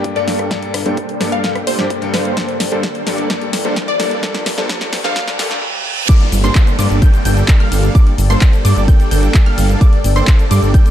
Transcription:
Already playing: G2 G3 A#3 D4 G4 A4 D5 G5, riser
0.04 kick, closed hi-hat
0.15 G2 G3 A#3 D4 A4 D5 F5, closed hi-hat
0.28 G1, snare, open hi-hat
0.39 cross-stick, closed hi-hat
0.50 G2 G3 A#3 D4 A4 D5, kick, snare, closed hi-hat
0.62 closed hi-hat
0.74 G1, cross-stick, open hi-hat
0.85 G2 G3 A#3 D4 A4 C5, closed hi-hat
0.97 kick, closed hi-hat
1.09 closed hi-hat
1.20 G2 G3 A#3 D4 A4 D5, cross-stick, snare, open hi-hat
1.32 G1 F5, closed hi-hat
1.43 G2 G3 A#3 D4 A4 G5, kick, snare, closed hi-hat
1.55 cross-stick, closed hi-hat
1.67 G1 G3 A#3 D4 A4 C5 G5, open hi-hat
1.78 G2 G3 A#3 D4 G4, snare
1.90 kick, closed hi-hat
2.01 G2 G3 A#3 D4 A4 F5, closed hi-hat
2.14 G1 C5, snare, open hi-hat
2.25 closed hi-hat
2.36 G2 G3 A#3 D4 A4, kick, snare, closed hi-hat
2.49 closed hi-hat
2.60 G1, snare, open hi-hat
2.71 G2 G3 A#3 D4 A4 C5
2.83 kick, snare, closed hi-hat
2.95 closed hi-hat
3.06 G2 G3 A#3 D4 A4 D5, snare, open hi-hat
3.18 G1, closed hi-hat
3.29 G2 G3 A#3 D4 A4, kick, snare, closed hi-hat
3.42 closed hi-hat
3.53 G1, snare, open hi-hat
3.64 G2 G3 A#3 D4 A4 C5, closed hi-hat
3.76 kick, snare, closed hi-hat
3.88 D5, closed hi-hat
3.99 G1 G2 G3 A#3 D4 A4 D5, snare, open hi-hat
4.11 closed hi-hat
4.22 G2 G3 A#3 D4 A4 D5, kick, snare, closed hi-hat
4.35 snare, closed hi-hat
4.46 G1, snare, open hi-hat
4.57 G2 G3 A#3 D4 A4 C5, snare, closed hi-hat
4.69 G2 G3 A#3 D4 A4, kick, snare, closed hi-hat
4.81 snare, closed hi-hat
4.93 G2, snare, open hi-hat
5.04 G1 G2 G3 A#3 D4 A4 C5 F5, snare, closed hi-hat
5.15 G2 G3 A#3 D4 A4, kick, snare, closed hi-hat, reverse cymbal
5.28 snare, closed hi-hat
5.39 G1 G2 G3 A#3 D4 A4 D5, snare, open hi-hat
5.51 snare, closed hi-hat
6.09 G3 A#3 D4 A4 D5 G5 D6, kick, closed hi-hat, crash, downlifter, shaker
6.21 closed hi-hat
6.32 G1, open hi-hat, shaker
6.44 G3 A#3 D4 A4 C5 C6, cross-stick, closed hi-hat, shaker
6.55 kick, clap, closed hi-hat, shaker
6.67 closed hi-hat, shaker
6.79 G2 G3 A#3 D4 A4 D5 D6, open hi-hat, shaker
6.90 G1, closed hi-hat, shaker
7.02 G3 A#3 D4 A4 G5 G6, kick, closed hi-hat, shaker
7.14 closed hi-hat, shaker
7.25 G1 G3 A#3 D4 A4 G5 G6, open hi-hat, shaker
7.37 closed hi-hat, shaker
7.48 kick, clap, closed hi-hat, shaker
7.60 G3 A#3 D4 A4 F5 F6, closed hi-hat
7.72 G1, open hi-hat, shaker
7.83 closed hi-hat, shaker
7.95 G3 A#3 D4 D5 D6, kick, closed hi-hat, shaker
8.07 closed hi-hat
8.18 G1, open hi-hat, shaker
8.30 G3 A#3 D4 A4 C5 C6, cross-stick, closed hi-hat, shaker
8.41 kick, clap, closed hi-hat, shaker
8.53 closed hi-hat, shaker
8.65 G2 G3 A#3 D4 A4 D5 D6, open hi-hat, shaker
8.76 G1, closed hi-hat, shaker
8.88 G6, kick, closed hi-hat, shaker
9.00 closed hi-hat, shaker
9.11 G1 G3 A#3 D4 A4 G5 G6, open hi-hat, shaker
9.23 closed hi-hat, shaker
9.34 kick, clap, closed hi-hat, shaker
9.46 G3 A#3 D4 A4 F5 F6, closed hi-hat
9.58 G1, open hi-hat, shaker
9.69 closed hi-hat, shaker
9.81 G3 A#3 D4 A4 D5 D6, kick, closed hi-hat, shaker
9.93 closed hi-hat
10.04 G1, open hi-hat, shaker
10.16 G3 A#3 D4 A4 C5 C6, cross-stick, closed hi-hat, shaker
10.27 kick, clap, closed hi-hat, shaker
10.39 closed hi-hat, shaker
10.51 G2 G3 A#3 D4 A4 D5 D6, open hi-hat, shaker
10.62 G1, closed hi-hat, shaker
10.74 G3 A#3 A4 G5 G6, kick, closed hi-hat, shaker
10.86 closed hi-hat, shaker

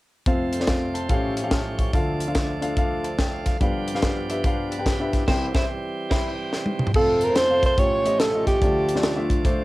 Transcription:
0.26 F1 F2 F3 A3 C4 F4 A4 F5, kick, closed hi-hat
0.53 A4 C5, closed hi-hat
0.60 C4 F4 A4 D5, snare
0.67 A4 D5 F5, kick, snare, closed hi-hat
0.94 A4 C5 A5, closed hi-hat
1.09 A1 A2 F3 A3 C#4 F#4 G4 A4 F5, kick, closed hi-hat
1.14 G4
1.37 closed hi-hat
1.43 C#4 G4 A4 F5
1.51 A5 F6, kick, snare, closed hi-hat
1.78 F5 C#6, kick, closed hi-hat
1.93 D2 D3 F3 A3 D4 F4 A4 F5, kick, closed hi-hat
2.20 closed hi-hat
2.27 D4 F4 A4 F5
2.35 kick, snare, closed hi-hat
2.61 D4 F4 A4 F5, closed hi-hat
2.77 D4 F4 A4 F5, kick, closed hi-hat
3.04 C5 A5, closed hi-hat
3.18 G5 A5, kick, snare, closed hi-hat
3.33 F5
3.46 A4 F5, kick, snare, closed hi-hat
3.60 G1 G2 F3 B3 D4 G4 B4 F5, kick, closed hi-hat
3.88 closed hi-hat
3.94 D4 G4 B4 F5, snare
4.02 kick, snare, closed hi-hat
4.29 D4 G4 B4 E5, closed hi-hat
4.44 D4 G4 B4 F5, kick, closed hi-hat
4.71 B4 D5, closed hi-hat
4.78 D4 G4 B4 G5
4.86 G4 B4, kick, snare, closed hi-hat
5.00 D4 G4 B4 E5
5.13 E4 G4, kick, snare, closed hi-hat
5.28 C2 C3 E3 G3 C4 E4 G4 C5 G5, kick, snare, crash
5.55 E4 G4 C5 E5, kick, snare
6.11 E4 G4 C5 G5, kick, snare, crash
6.53 snare
6.66 high tom
6.79 mid tom
6.87 floor tom
6.94 F1 F2 F3 A3 C4 F4 A4 F5, kick, crash
7.21 A#4, closed hi-hat
7.29 C4 F4 A4 C5
7.36 C5, snare, closed hi-hat
7.49 C4 F4 A4 F5
7.63 C5, kick, closed hi-hat
7.77 A1 A2 F3 A3 C4 F4 G4 C#5, kick, closed hi-hat
7.83 C#4
8.04 A3 F4 G4 D#5, closed hi-hat
8.20 A4, snare, closed hi-hat
8.33 A3 F4 G4 D#5
8.47 G4, kick, snare, closed hi-hat
8.61 D2 D3 F3 A3 D4 F4 G#4 D5, kick, closed hi-hat
8.67 A4
8.89 closed hi-hat
8.95 A3 D4 F4 D5, snare
9.03 snare, closed hi-hat
9.16 A3 D4 F4 E5
9.30 kick, closed hi-hat
9.45 A3 D4 F4 C5, kick, closed hi-hat

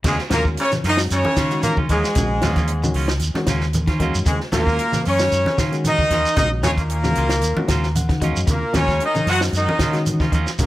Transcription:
0.04 D#2 G#2 C#3 F#3 G#3 A#3 C#4 F4 G#4, kick, crash, high conga, low conga, shekere
0.08 G#3
0.18 snare
0.30 D#2 A#2 D#3 F3 F#3 G#3 A#3 C#4 F4 F#4 A#4, snare, closed hi-hat, high conga, low conga, shekere
0.35 A#3
0.45 kick, shekere
0.57 C#3 C#4 C#5, closed hi-hat, high conga
0.71 C#3, snare, closed hi-hat, high conga, shekere
0.84 F#2 D#3 F#3 A#3 C#4 D#4 F4, snare, open hi-hat, shekere
0.89 D#4 D#5
0.97 D#3 G#3 C#4 F#4, snare, shekere
1.10 F#2 C#3 C#4 C#5, closed hi-hat, high conga, shekere
1.25 high conga
1.36 C#3 D#3 F#3 A#3 C#4 F4, kick, snare, closed hi-hat, shekere
1.51 D#3 G#3 C#4 F#4, closed hi-hat, shekere
1.63 A#2 A#3 A#4, closed hi-hat, high conga, shekere
1.68 A#3
1.77 C#3 A#3 C#4 F4, kick
1.89 D#2 G#2 D#3 F#3 G#3 A#3 C#4 F4 G#4, kick, closed hi-hat, high conga, shekere
2.04 snare, shekere
2.15 A#1 C#3 D#3 G#3 C#4 F#4, kick, closed hi-hat, high conga, low conga, shekere
2.41 D#2 F3 F#3 A#3 C#4 F4, snare, closed hi-hat, high conga, low conga, shekere
2.56 A#3 C#4 F4, kick, snare, closed hi-hat, high conga, shekere
2.67 closed hi-hat, high conga
2.83 C#3 D#3 G#3 C#4 F#4, high conga, shekere
2.94 C#2 F#3 A#3 C#4 F4, open hi-hat, shekere
3.08 D#3, snare, closed hi-hat, shekere
3.19 D#2, closed hi-hat, high conga, shekere
3.34 D#3 G#3 C#4 F#4, muted fingered electric bass stroke, snare, high conga
3.46 D#2 C#3 F#3 A#3 C#4 F4, kick, snare, closed hi-hat, shekere
3.60 snare, shekere
3.73 closed hi-hat, high conga, shekere
3.87 D#3 A#3 C#4 F4, muted clean electric guitar stroke, kick, snare, closed hi-hat
4.00 D#2 D#3 F#3 G#3 A#3 C#4 F4 F#4, kick, closed hi-hat, high conga, shekere
4.15 F#2, shekere
4.25 D#2 G#2 C#3 G#3 G#4, kick, closed hi-hat, high conga, low conga, shekere
4.30 G#3
4.40 snare
4.52 D#2 A#2 D#3 F3 F#3 G#3 A#3 C#4 F4 F#4 A#4, snare, closed hi-hat, high conga, low conga, shekere
4.67 A#3 C#4 F4, kick, shekere
4.79 closed hi-hat, high conga
4.92 C#3, snare, closed hi-hat, high conga, shekere
5.05 F#2 C#3 F#3 A#3 C#4 F4 C#5, open hi-hat, shekere
5.19 D#3 G#3 C#4 F#4, snare, shekere
5.32 F#2, closed hi-hat, high conga, shekere
5.46 snare, high conga
5.58 C#3 D#3 F#3 A#3 C#4 F4, kick, snare, closed hi-hat, shekere
5.72 D#3 G#3 C#4 F#4, closed hi-hat, shekere
5.84 D#3 D#4 D#5, closed hi-hat, high conga, shekere
5.98 C#3, kick
6.10 D#2 D#3 F#3 A#3 C#4 F4, kick, snare, closed hi-hat, high conga, shekere
6.26 shekere
6.36 A#1 C#3 D#3 G#3 C#4 D#4 F#4 D#5, kick, closed hi-hat, high conga, low conga, shekere
6.40 D#4
6.63 D#2 C#3 F3 F#3 A#3 C#4 F4 C#5, snare, closed hi-hat, high conga, low conga, shekere
6.77 A#2 A#3 A#4, kick, closed hi-hat, shekere
6.81 A#3
6.90 closed hi-hat, high conga
7.03 C#3 D#3 G#3 C#4 F#4, snare, high conga, shekere
7.15 C#2 F#3 A#3 C#4 F4, closed hi-hat, shekere
7.29 D#3, snare, closed hi-hat, shekere
7.41 D#2, closed hi-hat, high conga, shekere
7.57 D#3 G#3 C#4 F#4, muted fingered electric bass stroke, high conga
7.68 D#2 C#3 F#3 A#3 C#4 F4 A#5, kick, snare, closed hi-hat, shekere
7.83 snare, shekere
7.95 F#5, closed hi-hat, high conga, shekere
8.09 C#3 D#3, kick, snare, closed hi-hat
8.21 D#2 D#3 F#3 G#3 A#3 C#4 F4 F#4 D#5, kick, closed hi-hat, high conga, shekere
8.36 F#2, shekere
8.47 D#2 A#2 C#3 A#3, kick, closed hi-hat, high conga, low conga, shekere
8.51 A#3 A#4
8.73 D#2 C#3 D#3 F3 F#3 G#3 A#3 C#4 F4 F#4 C#5, snare, closed hi-hat, high conga, low conga, shekere
8.77 C#4
8.87 A#3 C#4 F4, kick, snare, shekere
9.00 D#3 D#4, closed hi-hat, high conga
9.04 D#4 D#5
9.15 C#3, closed hi-hat, high conga, shekere
9.26 F#2 F#3 A#3 C#4 F4 F#4 F#5, snare, open hi-hat, shekere
9.30 F#3 F#4
9.41 D#3 G#3 C#4 F#4, snare, shekere
9.53 F#2 D#4 D#5, closed hi-hat, high conga, shekere
9.57 D#3 D#4
9.69 high conga
9.79 C#3 D#3 F#3 A#3 C#4 F4, kick, snare, closed hi-hat, shekere
9.92 D#3 G#3 C#4 F#4, snare, closed hi-hat, shekere
10.06 closed hi-hat, high conga, shekere
10.20 C#3 A#3 C#4 F4, kick, snare
10.32 D#2 D#3 F#3 A#3 C#4 F4, kick, closed hi-hat, high conga, shekere
10.47 snare, shekere
10.58 A#1 A#2 C#3 D#3 G#3 A#3 C#4 F#4 A#4, kick, closed hi-hat, high conga, low conga, shekere
10.63 A#3

